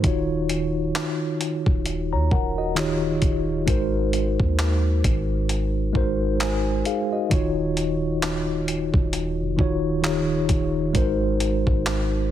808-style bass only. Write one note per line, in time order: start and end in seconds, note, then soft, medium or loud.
0.04 0.91 D#1 loud
1.67 2.14 D#1 loud
2.12 2.30 D#2 medium
2.32 3.19 D#1 medium
3.22 3.66 D#1 loud
3.68 4.37 G#1 loud
4.40 5.02 D#2 medium
5.05 5.92 G#1 loud
5.95 6.82 G#1 loud
7.31 8.90 D#1 loud
8.94 9.41 D#1 loud
9.40 9.58 F1 loud
9.59 10.46 D#1 loud
10.49 10.93 D#1 loud
10.95 11.64 G#1 loud
11.67 12.29 G#1 medium